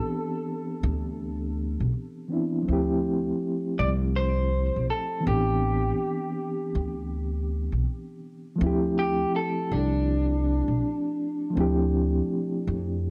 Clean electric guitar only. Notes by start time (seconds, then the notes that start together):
Already playing: A4
3.79 D5
4.16 C5
4.90 A4
5.28 G4
8.99 G4
9.36 A4
9.73 D4